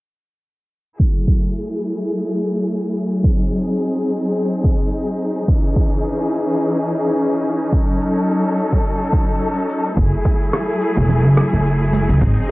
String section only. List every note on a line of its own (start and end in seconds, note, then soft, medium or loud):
1.00 5.44 F#3 medium
1.00 3.22 A3 medium
1.00 3.22 E4 medium
1.00 3.22 G#4 medium
3.24 5.46 C4 medium
3.24 9.93 D#4 medium
3.24 5.46 G#4 medium
5.48 7.70 E3 medium
5.48 9.93 C#4 medium
5.48 7.70 G#4 medium
7.73 9.95 F#3 medium
7.73 9.95 A4 medium
9.97 12.51 F#3 medium
9.97 12.19 A3 medium
9.97 12.19 E4 medium
9.97 12.19 G#4 medium
12.21 12.51 C4 medium
12.21 12.51 D#4 medium
12.21 12.51 G#4 medium